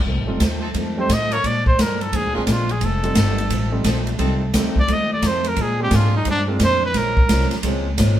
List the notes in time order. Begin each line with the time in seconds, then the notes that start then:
0.05 C2 F2 D#3 A3 C4, kick
0.17 A1
0.27 F1 G3 A3 C4 D#4 F4
0.40 D#2 F2 D#3 A3 C4, kick, snare, hi-hat pedal, ride
0.61 F3 C4 D#4 A4
0.74 F2 D#3 A3 C4, kick, ride
0.97 G3 A3 C4 D#4 G4 C5
1.09 F2 A2 D#3 A3 C4, kick, snare, hi-hat pedal, ride
1.13 D#5
1.31 F3 A#3 D4 A#4 C#5, ride
1.43 A#2 F3 G#3 D4 D5, kick, ride
1.66 C5, kick
1.78 G2 A#2 F3 G#3 D4 A#4, kick, snare, hi-hat pedal, ride
2.01 A4, ride
2.13 F2 A#2 F3 G#3 D4 G#4, kick, ride
2.24 D2
2.33 A#1 F3 G#3 A#3 C4 D4 F4 G#4
2.47 A#1 A#2 F3 G#3 D4 F4, kick, snare, hi-hat pedal, ride
2.69 G#4, ride
2.81 F1 F2 D#3 A3 C4, kick, ride
2.85 A4
3.03 G3 A3 C4 D#4 F4, ride
3.15 G1 F2 D#3 A3 C4, kick, snare, hi-hat pedal, ride
3.38 ride
3.50 A1 F2 D#3 A3 C4, kick, ride
3.72 G3 A3 C4 D#4 F4
3.84 A#1 F2 D#3 F3 A3 C4 D#4 A4, kick, snare, hi-hat pedal, ride
4.07 ride
4.18 C2 F2 D#3 F3 G3 A3 C4 D#4 F4 A4, kick, ride
4.53 D2 F2 D#3 G3 A3 C4 D#4 G4, kick, snare, hi-hat pedal, ride
4.76 D5, kick
4.88 D#2 F2 D#3 A3 C4, kick, ride
4.93 D#5
5.13 D5
5.22 F2 D#3 A3 C4, kick, snare, hi-hat pedal, ride
5.26 C5
5.44 A#4, ride
5.56 A#2 F3 G#3 D4, kick, ride
5.62 G#4
5.79 G#3 A#3 C4 D4 F4 G4
5.91 G#2 A#2 F3 G#3 A#3 D4 G#4, kick, snare, hi-hat pedal, ride
5.95 F4
6.16 D#4
6.25 G2 A#2 F3 G#3 D4, kick, ride
6.30 D4
6.48 G#3 A#3 C4 D4 F4
6.60 F2 A#2 F3 G#3 D4, kick, snare, hi-hat pedal, ride
6.64 C5
6.85 B4
6.94 A#1 A#2 F3 G#3 C#4 A#4, kick, snare, ride
7.17 kick
7.29 C2 A#2 F3 G#3 C#4, kick, snare, hi-hat pedal, ride
7.40 snare
7.51 snare, ride
7.63 C#2 A#2 F3 G#3 A#3 C4 C#4 F4, kick, ride
7.97 G#1 A#2 F3 G#3 C#4, kick, snare, hi-hat pedal, ride